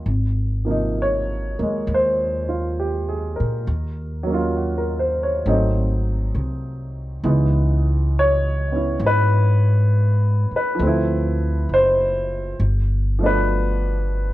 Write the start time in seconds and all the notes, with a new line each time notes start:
0.06 G#1
0.65 C3 F3 A#3
0.71 D#4
1.02 C#5
1.59 D#2 G#3 A#3
1.87 D#2
1.94 C5
2.49 F4
2.79 G4
3.08 G#4
3.36 A#4
3.40 A#2
3.67 D#2
4.23 F#3 A#3
4.30 C#4 F4
4.56 F#4
4.78 A#4
4.99 C5
5.23 C#5
5.45 G#1 F#3 A3 C4 D#4
6.34 C2
7.24 C#2 E3 G#3 B3 D#4
8.19 C#5
8.72 B3 C#4 E4
9.00 G#2
9.07 B4
10.51 muted upright bass stroke
10.56 B4
10.75 F3
10.79 D2 A3 C4
10.87 E4
11.69 F#1
11.74 C5
12.60 G1
13.19 F3 A3
13.23 B3 D4 B4